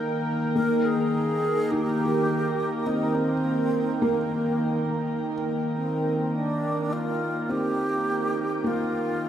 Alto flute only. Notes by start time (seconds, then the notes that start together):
0.56 A#4
0.85 G#4
1.71 G4
2.86 D#4
3.15 C4
4.02 A#3
5.77 C4
6.35 D4
6.93 F4
7.51 G4
8.67 F4